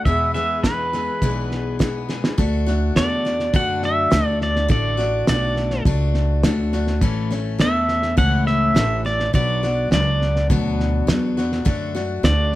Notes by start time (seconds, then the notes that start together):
0.05 E2 B2 E3 G#3 B3 G#4 E5, kick, snare
0.34 E3 G#3 B3 G#4 E5, snare
0.63 E3 G#3 B3 G#4 B4, kick, snare, hi-hat pedal
0.93 E3 G#3 B3 G#4, snare
1.22 B1 E2 B2 E3 G#3 B3 G#4, kick, snare
1.52 snare
1.79 E3 G#3 B3 G#4, kick, snare, hi-hat pedal
2.09 E3 G#3 B3 G#4, snare
2.24 snare
2.38 D2 D3 A3 D4 F#4, kick, snare
2.66 A3 D4 F#4, snare
2.96 E2 D3 A3 D4 F#4 D5, snare, hi-hat pedal
3.25 A3 D4 F#4, snare
3.40 snare
3.53 F#2 D3 A3 D4 F#4 F#5, kick, snare
3.83 E5, snare
4.11 D2 D3 A3 D4 F#4, snare, hi-hat pedal
4.26 D5
4.41 D5, snare
4.56 snare
4.68 A1 D3 A3 D4 F#4 D5, kick, snare
4.97 A3 D4 F#4, snare
5.27 B1 D3 A3 D4 F#4 D5, snare, hi-hat pedal
5.57 snare
5.71 snare
5.85 C#2 A3 D4 F#4, kick, snare
6.14 snare
6.43 D2 D3 A3 D4 F#4, snare, hi-hat pedal
6.73 A3 D4 F#4, snare
6.87 snare
7.01 A1 A2 E3 A3 C#4 A4, kick, snare
7.31 A3 C#4 A4, snare
7.58 E2 E3 A3 C#4 A4 E5, snare, hi-hat pedal
7.89 snare
8.03 snare
8.17 C#2 A2 E3 A3 C#4 A4 F#5, kick, snare
8.47 E5, snare
8.75 A1 E3 A3 C#4 A4, snare, hi-hat pedal
9.05 A3 C#4 A4 D5, snare
9.20 snare
9.33 B1 B2 F#3 B3 D4 F#4 D5, kick, snare
9.63 B3 D4 F#4, snare
9.91 C#2 F#3 B3 D4 D5, snare, hi-hat pedal
9.95 F#4
10.22 snare
10.36 snare
10.50 D2 B2 F#3 B3 D4 F#4, kick, snare
10.80 snare
11.07 E2 F#3 B3 D4 F#4, snare, hi-hat pedal
11.37 B3 D4 F#4, snare
11.52 snare
11.65 F#2 D3 A3 D4 F#4, kick, snare
11.95 A3 D4 F#4, snare
12.23 D2 D3 A3 D4 F#4 D5, snare, hi-hat pedal